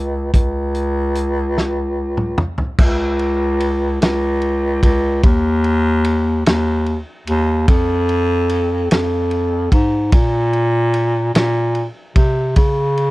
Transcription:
0.00 0.30 C#2 medium
0.34 2.48 C#2 medium
0.34 kick medium
0.34 closed hi-hat medium
0.75 closed hi-hat soft
1.15 closed hi-hat medium
1.58 snare soft
2.17 mid tom medium
2.38 mid tom medium
2.58 floor tom medium
2.78 3.97 C#2 loud
2.78 kick loud
2.78 crash loud
3.19 ride soft
3.60 ride medium
4.01 4.78 C#2 loud
4.01 snare loud
4.01 ride medium
4.42 ride soft
4.83 5.21 C#2 loud
4.83 kick medium
4.83 ride medium
5.23 6.42 D#2 loud
5.23 kick loud
5.23 ride medium
5.64 ride soft
6.04 ride medium
6.46 6.97 D#2 loud
6.46 snare loud
6.46 ride medium
6.86 ride soft
7.27 7.66 D#2 loud
7.27 ride medium
7.68 8.86 F2 loud
7.68 kick loud
7.68 ride medium
8.09 ride soft
8.49 ride medium
8.90 9.68 F2 medium
8.90 snare loud
8.90 ride medium
9.31 ride soft
9.72 10.10 G#2 medium
9.72 kick medium
9.72 ride medium
10.12 11.31 A#2 loud
10.12 kick loud
10.12 ride medium
10.53 ride soft
10.94 ride medium
11.34 11.85 A#2 loud
11.34 snare loud
11.34 ride medium
11.75 ride soft
12.16 12.54 C3 medium
12.16 kick loud
12.16 ride medium
12.56 13.11 C#3 loud
12.56 kick loud
12.56 ride medium
12.97 ride soft

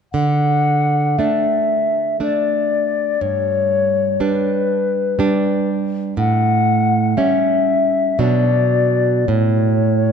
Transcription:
0.13 1.16 D3 soft
0.13 1.20 F#5 medium
1.18 2.16 A3 soft
1.18 2.17 D4 soft
1.18 2.20 E5 soft
2.20 3.17 A3 soft
2.20 3.17 D4 soft
2.20 3.23 D5 soft
3.21 4.18 G2 soft
3.21 4.22 C#5 medium
4.20 5.15 G3 soft
4.20 5.15 D4 soft
4.20 5.68 B4 soft
5.19 6.14 G3 soft
5.19 6.14 D4 soft
6.17 7.14 A2 medium
6.17 7.19 F#5 medium
7.17 8.16 G3 soft
7.17 8.16 C#4 soft
7.17 8.21 E5 soft
8.19 9.25 B2 soft
8.19 9.24 F#3 soft
8.19 9.24 D4 soft
8.19 9.30 D5 medium
9.28 10.12 A2 soft
9.28 10.12 C#5 soft

